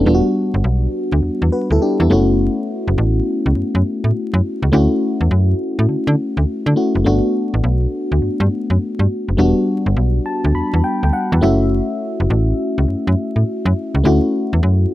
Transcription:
Already playing: A3
0.05 E1 G3 B3 D4 F4
0.14 F#4
0.54 G1
0.64 B1
1.12 D2
1.23 E2
1.42 E2
1.52 F#4 B4
1.70 D2 E4 A4
1.82 D4 G4
2.00 E2 B3 E4
2.10 F#1 A3 C#4 E4 F#4
2.88 F#1
2.98 A1
3.46 C#2
3.56 F#2
3.75 F#2
4.04 A2
4.34 F#2
4.62 C#2
4.72 D2 A3 C#4 E4 F#4
5.21 E2
5.31 F#2
5.79 A2
5.89 D3
6.07 D3
6.37 D2
6.66 D3
6.76 A3 C#4 E4 F#4
6.95 F#1
7.04 G1 A3 B3 D4 F#4
7.54 A1
7.64 B1
8.12 D2
8.22 G2
8.40 G2
8.70 F#2
8.99 G2
9.28 F#1
9.37 E1 G3 B3 D4 F#4
9.86 G1
9.96 B1
10.26 A5
10.44 D2
10.55 E2 B5
10.73 E2
10.84 G5
11.03 D2 G5
11.13 F#5
11.32 E2
11.41 F#1 A3 C#4 E4 F#4 E5
12.20 F#1
12.30 A1
12.78 C#2
12.88 F#2
13.07 F#2
13.36 A2
13.65 F#2
13.95 C#2
14.04 D2 A3 C#4 E4 F#4
14.53 E2
14.63 F#2

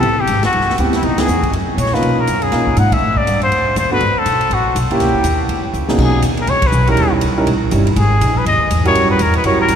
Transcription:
Already playing: A4
0.03 A1, ride
0.21 G4
0.27 G#1, hi-hat pedal, ride
0.43 F#4, snare, ride
0.53 G1, ride
0.61 snare
0.70 snare
0.78 D2 B3 C4 E4 G4, hi-hat pedal, ride
0.93 E4, snare, ride
1.03 C#2 D#4, ride
1.18 B3 D#4 E4 G#4, snare, ride
1.28 E2, hi-hat pedal
1.43 kick, ride
1.52 F#2, ride
1.77 A#2 C#5, hi-hat pedal, ride
1.86 snare
1.93 A#3 C#4 D#4 F4 B4, snare
2.02 B2, ride
2.20 A#4
2.27 F#2, hi-hat pedal, ride
2.42 G#4, ride
2.52 A#2 A#3 C#4 D#4 F4, snare, ride
2.67 kick
2.77 G#2 F#5, hi-hat pedal, ride
2.92 E5, kick, ride
3.01 A2
3.16 D5, kick
3.27 G2, hi-hat pedal, ride
3.42 C5, ride
3.51 D2, ride
3.76 D#2 C5, hi-hat pedal, ride
3.91 A3 B3 D4 F#4 B4
4.00 G1, ride
4.15 A4, muted upright bass stroke
4.25 B1, hi-hat pedal, ride
4.41 ride
4.50 A1 F#4, ride
4.75 B1, hi-hat pedal, ride
4.91 A#3 C#4 E4 G4, muted upright bass stroke, ride
5.00 C#2, snare, ride
5.15 kick
5.23 D#2, hi-hat pedal, ride
5.48 E2, ride
5.64 muted upright bass stroke
5.73 C#2, hi-hat pedal
5.89 B2 A#3 C#4 D#4 G#4, snare
5.98 B1 G#4, kick, crash
6.22 D#2, hi-hat pedal, ride
6.37 A#4, ride
6.47 C#2 C#5, ride
6.62 kick, ride
6.67 B4
6.72 B1, hi-hat pedal
6.87 G3 C#4 D#4 E4 A#4, ride
6.97 D#2, ride
7.21 C#2, hi-hat pedal, ride
7.38 G3 C#4 D#4 E4 A#4
7.47 A#1, ride
7.71 G1 G3 C#4 D#4 E4 C#5, hi-hat pedal, ride
7.87 ride
7.96 G#1 G#4, ride
8.21 A#1, hi-hat pedal, ride
8.38 B4
8.46 D#2 D#5, ride
8.71 E2, hi-hat pedal, ride
8.85 G3 C#4 E4 F#4 A#4 C#5, ride
8.95 F#2, ride
9.11 B4
9.19 E2 A#4, hi-hat pedal, ride
9.34 B4, ride
9.44 F#2 G3 C#4 E4 F#4 A#4 C#5, ride
9.61 A#4
9.68 G2, hi-hat pedal, ride

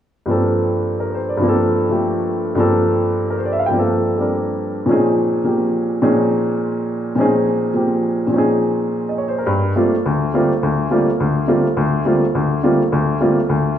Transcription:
0.26 G2 F3 A#3 C4
0.31 A4
1.00 A#4
1.15 C5
1.29 D5
1.37 G2 F3
1.42 A#3 C4
1.49 A4
1.89 F3 A3 G4
2.55 G2 F3 A#3 C4
2.60 A4
3.30 A#4
3.38 C5
3.45 D5
3.52 E5
3.59 F5
3.66 G2 G5
3.71 F3 A#3
3.76 C4 A4
4.18 G3 C4 D4 A#4
4.86 A#2 F3 C4 C#4
4.90 D#4 G#4
5.44 F3 A#3 C4 G4
6.02 A#2 F3 C4 C#4 D#4 G#4
7.15 A#2 F3 C4 C#4
7.20 D#4 G#4
7.74 F3 A#3 C4 G4
8.27 A#2 F3
8.32 C4 C#4
8.36 D#4 G#4
9.09 D#5
9.18 C#5
9.28 C5
9.38 A#4
9.46 G2
9.76 G3 A3 A#3 C4 F4
10.06 D2
10.34 G3 A3 A#3 C4 F4
10.63 D2
10.91 G3 A3 A#3 C4 F4
11.20 D2
11.48 G3 A3 A#3 C4 F4
11.77 D2
12.05 G3 A3 A#3 C4 F4
12.35 D2
12.63 G3 A3 A#3 C4 F4
12.92 D2
13.20 G3 A3 A#3 C4 F4
13.49 D2

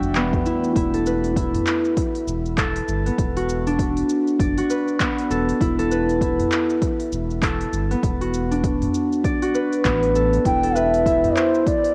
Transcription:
Already playing: E3 G3 A3 B3 D4 F#4 D5 E5 G5
0.03 E1, shaker
0.15 B3, clap, shaker
0.33 kick, mid tom, shaker
0.46 E4, shaker
0.64 shaker
0.76 E1 E4, kick, open hi-hat, shaker
0.94 A4, open hi-hat, shaker
1.06 B4, shaker
1.24 open hi-hat, shaker
1.36 E4, kick, open hi-hat, shaker
1.55 mid tom, open hi-hat, shaker
1.67 clap, shaker
1.85 shaker
1.97 kick, open hi-hat, shaker
2.15 open hi-hat, shaker
2.27 E1, shaker
2.46 shaker
2.58 A4, kick, clap, open hi-hat, shaker
2.76 open hi-hat, shaker
2.88 G1, shaker
3.06 B3, open hi-hat, shaker
3.18 E1, kick, open hi-hat, shaker
3.37 F#4, open hi-hat, shaker
3.49 shaker
3.67 D4, open hi-hat, shaker
3.79 kick, open hi-hat, shaker
3.97 open hi-hat, shaker
4.09 shaker
4.27 shaker
4.39 F#1 D5, kick, open hi-hat, shaker
4.58 F#4, open hi-hat, shaker
4.70 B4, shaker
4.88 shaker
5.00 B3, kick, clap, open hi-hat, shaker
5.18 open hi-hat, shaker
5.30 E1 A4, shaker
5.49 open hi-hat, shaker
5.61 E1 E4, kick, open hi-hat, shaker
5.79 A4, open hi-hat, shaker
5.91 B4, shaker
6.09 open hi-hat, shaker
6.21 E4, kick, open hi-hat, shaker
6.40 mid tom, open hi-hat, shaker
6.52 clap, shaker
6.70 shaker
6.82 kick, open hi-hat, shaker
7.00 open hi-hat, shaker
7.12 E1, shaker
7.30 shaker
7.43 A4, kick, clap, open hi-hat, shaker
7.61 open hi-hat, shaker
7.73 G1, shaker
7.91 B3, open hi-hat, shaker
8.03 E1, kick, open hi-hat, shaker
8.21 F#4, open hi-hat, shaker
8.34 shaker
8.51 D4, open hi-hat, shaker
8.64 kick, open hi-hat, shaker
8.82 mid tom, open hi-hat, shaker
8.94 shaker
9.12 shaker
9.24 D5, kick, open hi-hat, shaker
9.42 F#4, open hi-hat, shaker
9.55 B4, shaker
9.73 open hi-hat, shaker
9.85 A1 B3, kick, clap, open hi-hat, shaker
10.03 open hi-hat, shaker
10.15 A4, shaker
10.33 open hi-hat, shaker
10.45 E1 E4 G5, kick, open hi-hat, shaker
10.63 A4, open hi-hat, shaker
10.75 B4 E5, shaker
10.94 open hi-hat, shaker
11.06 E4, kick, open hi-hat, shaker
11.24 mid tom, open hi-hat, shaker
11.37 C5, clap, shaker
11.55 shaker
11.67 D5, kick, open hi-hat, shaker
11.84 open hi-hat, shaker

